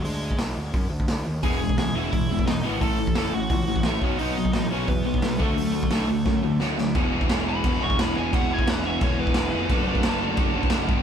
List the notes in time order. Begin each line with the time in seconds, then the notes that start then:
0.04 D2 G#3 G#4, open hi-hat
0.31 kick
0.38 B1, snare, open hi-hat
0.56 D2
0.73 F#2, kick, open hi-hat
0.90 D2
1.00 kick
1.08 D2, snare, open hi-hat
1.26 D#2
1.43 E1 E2 B2 E3 G#3 B3 G#4 G#5, kick, open hi-hat
1.61 E2 B2 E3 G#3
1.69 kick
1.77 C#2 E2 B2 E3 G#3 G#4 G#5, snare, open hi-hat
1.95 E1 E2 B2 E3 G#3 B3 E4 E5
2.12 A1 E2 B2 E3 G#3, kick, open hi-hat
2.29 E1 E2 B2 E3 G#3
2.39 kick
2.46 E1 E2 B2 E3 G#3 D#4 D#5, snare, open hi-hat
2.63 G#1 E2 B2 E3 G#3 B3 B4
2.81 A1 A2 E3 A3 A4 A5, kick, open hi-hat
2.99 A2 E3
3.07 kick
3.15 F#1 A2 E3 A3 A4 A5, snare, open hi-hat
3.33 A1 A2 E3 F#4 F#5
3.50 C#2 A2 E3, kick, open hi-hat
3.67 A1 A2 E3
3.76 kick
3.83 A1 A2 E3 A3 E4 E5, snare, open hi-hat
4.02 B1 B2 F#3 B3 C#4 C#5, kick
4.19 B1 B2 F#3 B3 D#4 D#5, open hi-hat
4.37 B2 F#3
4.45 kick
4.53 A1 B2 F#3 D#4 D#5, snare, open hi-hat
4.70 B1 B2 F#3 B3 C#4 C#5
4.88 E2 B2 F#3 B3 B4, kick, open hi-hat
5.05 B1 B2 F#3 B3 B4
5.14 kick
5.22 B1 B2 F#3, snare, open hi-hat
5.39 D2 D3 F#3 A3 D4 A4, kick
5.56 D2 D3 F#3 A3, open hi-hat
5.73 D3 F#3 A3
5.83 kick
5.91 B1 D3 F#3 A3 D4, snare, open hi-hat
6.09 D2 D3 F#3 A3
6.26 F#2 D3 F#3 A3, kick, snare
6.43 D2 D3 F#3 A3
6.60 D2 D3 F#3 A3 D4, snare
6.78 D2 D3 F#3 A3, snare
6.95 E1 E2 B2 E3 B3 E4 G#4, kick, crash
7.11 E1 E2 B2 E3 B3 E4 G#4
7.21 kick
7.29 E1 E2 B2 E3 B3 E4 G#4, snare, crash
7.46 E2 B2 E3 B3 E4 G#4 B5
7.63 E1 E2 B2 E3 B3 E4 G#4, kick, crash
7.80 E1 E2 B2 E3 B3 E4 G#4 C#6
7.90 kick
7.97 E1 E2 B2 E3 B3 E4 G#4 B5, snare, crash
8.15 E1 E2 B2 E3 B3 E4 G#4 G#5
8.32 E1 E2 B2 E3 B3 E4 G#4 F#5, kick, crash
8.48 E2 B2 E3 B3 E4 G#4
8.53 G#5
8.59 kick
8.66 E1 E2 B2 E3 B3 E4 G#4 F#5, snare, crash
8.84 E2 B2 E3 B3 E4 G#4 E5
9.01 E1 E2 B2 E3 B3 E4 G#4 C#5, kick, crash
9.17 E2 B2 E3 B3 E4 G#4 B4
9.27 kick
9.34 E1 E2 B2 E3 B3 E4 G#4, snare, crash
9.52 F1 E2 B2 E3 B3 E4 G#4
9.69 F#1 D3 F#3 A3 D4 A4, kick, crash
9.86 F#1 D3 F#3 A3 D4 A4
9.95 kick
10.03 F#1 D3 F#3 A3 D4 A4, snare, crash
10.21 D3 F#3 A3 D4 A4
10.37 F#1 D3 F#3 A3 D4 A4, kick, crash
10.54 F#1 D3 F#3 A3 D4 A4
10.63 kick
10.70 F#1 D3 F#3 A3 D4 A4, snare, crash
10.86 G1 G2 G3 B3 D4 G4, kick
10.91 D3 G3